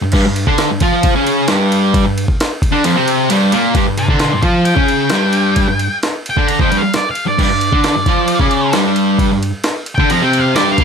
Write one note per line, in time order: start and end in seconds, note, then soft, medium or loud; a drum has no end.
0.02 0.12 G2 medium
0.12 0.24 G2 loud
0.12 0.24 G3 loud
0.12 kick loud
0.12 crash loud
0.26 0.44 G2 medium
0.36 ride medium
0.47 0.69 D3 medium
0.47 0.69 D4 loud
0.47 kick medium
0.58 snare loud
0.58 ride loud
0.71 0.82 G2 medium
0.80 1.15 F3 loud
0.80 1.15 F4 loud
0.80 kick medium
0.80 ride medium
1.03 kick loud
1.03 ride loud
1.16 1.49 C#3 medium
1.16 1.49 C#4 loud
1.27 ride medium
1.48 2.04 G2 loud
1.48 2.04 G3 loud
1.48 snare loud
1.48 ride loud
1.72 ride medium
1.94 kick loud
1.94 ride loud
2.05 2.23 G2 medium
2.18 ride medium
2.28 kick medium
2.40 snare loud
2.40 ride loud
2.62 kick medium
2.62 ride medium
2.71 2.83 D3 medium
2.71 2.83 D4 loud
2.84 2.95 F2 loud
2.84 2.95 F3 loud
2.84 ride loud
2.96 3.29 C3 medium
2.96 3.29 C4 medium
3.08 ride medium
3.30 3.52 G2 loud
3.30 3.52 G3 loud
3.30 ride loud
3.52 3.74 A#2 loud
3.52 3.75 A#3 loud
3.52 ride medium
3.75 3.86 G2 medium
3.75 3.86 G3 loud
3.75 kick loud
3.75 ride loud
3.87 4.05 G2 medium
3.98 4.21 G4 medium
3.98 4.20 C5 medium
3.98 ride medium
4.08 4.31 D3 loud
4.08 4.32 D4 loud
4.08 kick loud
4.19 4.42 A#4 medium
4.19 4.43 D5 medium
4.19 snare loud
4.19 ride medium
4.33 4.44 G2 medium
4.42 4.75 F3 medium
4.42 4.76 F4 loud
4.42 4.64 C5 medium
4.42 4.66 F5 medium
4.42 kick loud
4.42 ride medium
4.65 5.97 G5 loud
4.65 ride loud
4.76 5.10 C#3 medium
4.76 5.10 C#4 loud
4.76 kick loud
4.88 ride medium
5.10 5.67 G2 medium
5.10 5.68 G3 loud
5.10 snare loud
5.10 ride loud
5.33 ride medium
5.56 kick loud
5.56 ride medium
5.68 5.86 G2 medium
5.79 ride medium
6.03 snare loud
6.03 ride medium
6.26 6.47 G5 medium
6.26 ride medium
6.37 6.58 D3 medium
6.37 6.59 D4 loud
6.37 kick loud
6.47 6.61 A#5 medium
6.47 ride loud
6.59 6.70 F2 medium
6.59 6.70 F3 medium
6.59 6.76 G5 medium
6.59 kick loud
6.71 6.81 G2 medium
6.71 6.81 G3 loud
6.71 ride medium
6.78 6.92 F5 loud
6.83 muted distorted electric guitar stroke medium
6.94 7.09 D5 medium
6.94 snare loud
6.94 ride loud
7.11 7.24 F5 medium
7.15 ride medium
7.26 7.36 G2 medium
7.26 7.40 D5 medium
7.37 7.48 G2 loud
7.37 7.48 G3 loud
7.37 kick loud
7.37 crash loud
7.43 8.73 D5 medium
7.50 7.68 G2 medium
7.61 ride medium
7.72 7.94 D3 medium
7.72 7.94 D4 medium
7.72 kick loud
7.84 snare loud
7.84 ride loud
7.95 8.06 G2 medium
8.06 8.40 F3 medium
8.06 8.41 F4 loud
8.06 kick loud
8.06 ride medium
8.28 ride loud
8.40 8.73 C#3 loud
8.40 8.74 C#4 medium
8.40 kick loud
8.51 ride medium
8.73 9.30 G2 loud
8.73 9.31 G3 loud
8.73 snare loud
8.73 ride loud
8.96 ride medium
9.19 kick loud
9.19 ride loud
9.32 9.49 G2 medium
9.43 ride medium
9.64 snare loud
9.64 ride medium
9.86 ride medium
9.95 10.10 G5 loud
9.95 kick loud
9.99 10.10 D3 medium
9.99 10.10 D4 loud
10.10 10.21 F2 medium
10.10 10.21 F3 medium
10.10 10.24 A#5 medium
10.10 ride loud
10.21 10.55 C3 medium
10.21 10.55 C4 medium
10.21 10.40 G5 loud
10.33 ride medium
10.38 10.54 F5 loud
10.55 10.78 G2 medium
10.55 10.78 G3 loud
10.55 10.71 D5 medium
10.55 snare loud
10.55 ride loud
10.71 10.84 F5 medium
10.78 10.84 A#2 medium
10.78 10.84 A#3 loud
10.78 kick loud
10.78 ride medium